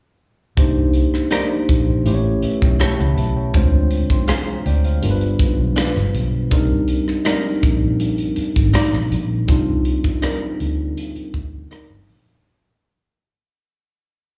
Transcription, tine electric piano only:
0.57 1.07 A#3 medium
0.57 1.07 D4 medium
0.57 1.08 D#4 medium
0.57 1.08 G4 medium
0.57 1.08 C5 medium
1.31 2.06 A#3 medium
1.31 2.06 D4 medium
1.31 2.06 D#4 medium
1.31 2.06 G4 medium
1.31 2.06 C5 medium
2.05 3.24 A3 medium
2.05 3.25 C#4 medium
2.05 3.25 E4 medium
2.05 3.25 G4 medium
2.05 2.13 C5 medium
2.14 2.47 C#5 medium
2.44 2.61 B4 soft
2.44 2.61 E5 medium
2.62 2.80 C#5 soft
2.62 2.80 G5 medium
2.81 2.99 E5 medium
2.81 2.98 A5 medium
2.99 3.17 F#5 medium
2.99 3.17 B5 medium
3.18 3.36 E5 soft
3.18 3.35 A5 soft
3.36 3.72 C#5 soft
3.36 3.71 G5 soft
3.54 4.04 G#3 medium
3.54 4.04 C4 medium
3.54 4.05 D4 medium
3.54 4.05 F4 medium
3.54 3.92 C5 medium
4.11 4.28 G5 soft
4.11 4.28 C6 medium
4.29 4.65 F5 soft
4.29 4.64 A#5 medium
4.66 4.84 D5 medium
4.66 4.84 G5 medium
4.85 5.20 C5 soft
4.85 5.20 F5 soft
5.02 6.22 G3 medium
5.02 6.22 B3 medium
5.02 6.22 D4 medium
5.02 6.22 F4 medium
5.02 5.10 A#4 medium
5.11 6.26 B4 medium
6.51 7.01 G3 medium
6.51 7.01 C4 medium
6.51 7.02 D4 medium
6.51 7.02 D#4 medium
6.51 7.02 A#4 medium
7.25 8.25 G3 medium
7.25 8.25 C4 medium
7.25 8.26 D4 medium
7.25 8.26 D#4 medium
7.25 8.26 A#4 medium
9.47 9.98 G3 medium
9.47 9.98 C4 medium
9.47 9.99 D4 medium
9.47 9.99 D#4 medium
9.47 9.99 F4 medium
10.22 11.22 G3 medium
10.22 11.22 C4 medium
10.22 11.23 D4 medium
10.22 11.23 D#4 medium
10.22 10.30 G#4 medium
10.30 11.26 A#4 medium

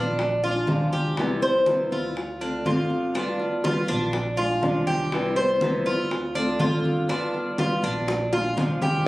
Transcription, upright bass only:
0.00 0.64 A#1 medium
0.68 1.85 C2 medium
1.92 2.62 D2 medium
2.65 3.82 G1 medium
3.89 4.59 A#1 medium
4.63 5.80 C2 medium
5.85 6.56 D2 medium
6.60 7.77 G1 medium
7.83 8.53 A#1 medium
8.57 9.08 C2 medium

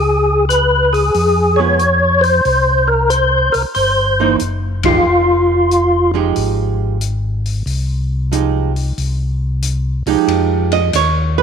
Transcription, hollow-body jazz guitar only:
1.59 1.78 G#3 medium
1.59 1.78 B3 soft
1.59 1.79 F4 medium
4.20 4.39 E3 medium
4.20 4.39 A#3 medium
4.20 4.39 D#4 medium
4.85 5.04 F3 medium
4.85 5.04 G#3 medium
4.85 5.04 D#4 medium
4.85 5.05 G4 medium
6.14 6.97 F3 medium
6.14 6.97 G#3 medium
6.14 6.97 D#4 medium
6.14 6.98 G4 medium
8.32 8.71 F3 medium
8.32 8.72 G#3 soft
8.32 8.72 D#4 soft
8.32 8.72 G4 soft
10.07 10.89 F3 medium
10.07 10.89 G#3 soft
10.07 10.90 D#4 medium
10.07 10.72 G4 medium
10.73 10.93 D#5 medium
10.96 11.37 C#5 medium
11.38 11.43 B4 medium

